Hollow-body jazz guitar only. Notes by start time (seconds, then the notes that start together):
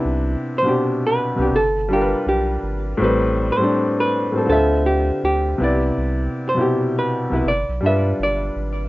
0.58 C5
1.07 B4
1.56 A4
1.93 G4
2.29 G4
3.52 C5
4.00 B4
4.50 A4
4.86 G4
5.25 G4
6.49 C5
6.99 B4
7.48 D5
7.86 E5
8.23 D5